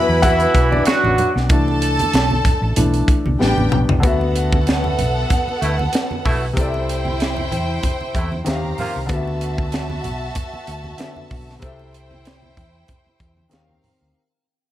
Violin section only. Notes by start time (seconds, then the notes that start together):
Already playing: B4 B5
1.50 A4 A5
3.40 G4 G5
4.03 B3 A4 F#5
6.56 E4 C5 G5
8.46 G4 F5 A#5
9.10 F#4 E5 A5
11.62 E4 C5 G5
13.52 C4 A#4 F5